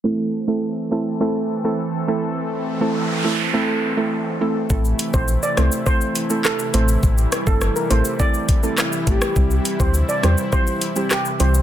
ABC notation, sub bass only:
X:1
M:4/4
L:1/16
Q:1/4=103
K:Am
V:1 name="Sub bass" clef=bass
z16 | z16 | A,,,2 z _B,,,2 z C,, z6 z A,,,2 | A,,,2 z G,,,2 z A,,, z6 z A,,, z |
C,,2 z D,,2 z E,, z6 z C,,2 |]